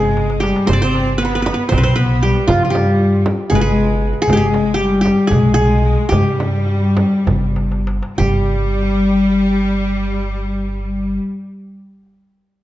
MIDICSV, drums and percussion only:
0, 0, Header, 1, 3, 480
1, 0, Start_track
1, 0, Tempo, 513699
1, 646, Time_signature, 7, 3, 24, 8
1, 4486, Tempo, 535714
1, 5926, Tempo, 581395
1, 6886, Tempo, 625000
1, 7366, Tempo, 641026
1, 10689, End_track
2, 0, Start_track
2, 0, Title_t, "Darbuka"
2, 159, Note_on_c, 9, 63, 59
2, 252, Note_off_c, 9, 63, 0
2, 279, Note_on_c, 9, 62, 66
2, 373, Note_off_c, 9, 62, 0
2, 403, Note_on_c, 9, 63, 70
2, 497, Note_off_c, 9, 63, 0
2, 524, Note_on_c, 9, 62, 74
2, 618, Note_off_c, 9, 62, 0
2, 639, Note_on_c, 9, 64, 91
2, 732, Note_off_c, 9, 64, 0
2, 885, Note_on_c, 9, 63, 63
2, 978, Note_off_c, 9, 63, 0
2, 1363, Note_on_c, 9, 63, 60
2, 1456, Note_off_c, 9, 63, 0
2, 1601, Note_on_c, 9, 64, 81
2, 1695, Note_off_c, 9, 64, 0
2, 2325, Note_on_c, 9, 64, 78
2, 2419, Note_off_c, 9, 64, 0
2, 2568, Note_on_c, 9, 63, 68
2, 2661, Note_off_c, 9, 63, 0
2, 3044, Note_on_c, 9, 63, 69
2, 3138, Note_off_c, 9, 63, 0
2, 3289, Note_on_c, 9, 64, 89
2, 3382, Note_off_c, 9, 64, 0
2, 3767, Note_on_c, 9, 62, 22
2, 3860, Note_off_c, 9, 62, 0
2, 3997, Note_on_c, 9, 64, 91
2, 4090, Note_off_c, 9, 64, 0
2, 4239, Note_on_c, 9, 63, 65
2, 4333, Note_off_c, 9, 63, 0
2, 4709, Note_on_c, 9, 63, 65
2, 4799, Note_off_c, 9, 63, 0
2, 4947, Note_on_c, 9, 64, 88
2, 5037, Note_off_c, 9, 64, 0
2, 5428, Note_on_c, 9, 62, 26
2, 5517, Note_off_c, 9, 62, 0
2, 5675, Note_on_c, 9, 64, 88
2, 5765, Note_off_c, 9, 64, 0
2, 5920, Note_on_c, 9, 63, 65
2, 6003, Note_off_c, 9, 63, 0
2, 6390, Note_on_c, 9, 63, 74
2, 6472, Note_off_c, 9, 63, 0
2, 6635, Note_on_c, 9, 64, 77
2, 6718, Note_off_c, 9, 64, 0
2, 6879, Note_on_c, 9, 63, 56
2, 6956, Note_off_c, 9, 63, 0
2, 6998, Note_on_c, 9, 62, 61
2, 7074, Note_off_c, 9, 62, 0
2, 7117, Note_on_c, 9, 63, 66
2, 7194, Note_off_c, 9, 63, 0
2, 7235, Note_on_c, 9, 62, 75
2, 7312, Note_off_c, 9, 62, 0
2, 7353, Note_on_c, 9, 64, 71
2, 7428, Note_off_c, 9, 64, 0
2, 10689, End_track
3, 0, Start_track
3, 0, Title_t, "Frame drum"
3, 643, Note_on_c, 9, 64, 80
3, 736, Note_off_c, 9, 64, 0
3, 1367, Note_on_c, 9, 64, 70
3, 1460, Note_off_c, 9, 64, 0
3, 1608, Note_on_c, 9, 64, 81
3, 1702, Note_off_c, 9, 64, 0
3, 2323, Note_on_c, 9, 64, 91
3, 2417, Note_off_c, 9, 64, 0
3, 2570, Note_on_c, 9, 64, 80
3, 2664, Note_off_c, 9, 64, 0
3, 3045, Note_on_c, 9, 64, 73
3, 3138, Note_off_c, 9, 64, 0
3, 3283, Note_on_c, 9, 64, 78
3, 3376, Note_off_c, 9, 64, 0
3, 4013, Note_on_c, 9, 64, 85
3, 4106, Note_off_c, 9, 64, 0
3, 4246, Note_on_c, 9, 64, 64
3, 4339, Note_off_c, 9, 64, 0
3, 4714, Note_on_c, 9, 64, 66
3, 4804, Note_off_c, 9, 64, 0
3, 4946, Note_on_c, 9, 64, 81
3, 5035, Note_off_c, 9, 64, 0
3, 5668, Note_on_c, 9, 64, 82
3, 5758, Note_off_c, 9, 64, 0
3, 5920, Note_on_c, 9, 64, 66
3, 6003, Note_off_c, 9, 64, 0
3, 6387, Note_on_c, 9, 64, 70
3, 6470, Note_off_c, 9, 64, 0
3, 6638, Note_on_c, 9, 64, 84
3, 6721, Note_off_c, 9, 64, 0
3, 7366, Note_on_c, 9, 64, 74
3, 7441, Note_off_c, 9, 64, 0
3, 10689, End_track
0, 0, End_of_file